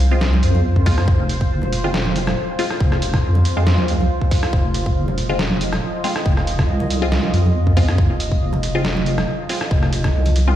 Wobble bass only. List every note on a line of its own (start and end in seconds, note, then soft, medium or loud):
0.00 0.41 C2 loud
0.43 1.06 F2 loud
1.08 1.49 F1 loud
1.51 2.36 F1 loud
2.80 3.22 F1 loud
3.24 4.08 F2 loud
4.53 4.95 F1 medium
4.96 5.81 F1 loud
6.26 6.67 F1 loud
6.69 7.32 C2 loud
7.34 7.97 F2 loud
7.98 8.40 F1 loud
8.42 9.26 F1 loud
9.71 10.13 F1 loud
10.14 10.56 C2 loud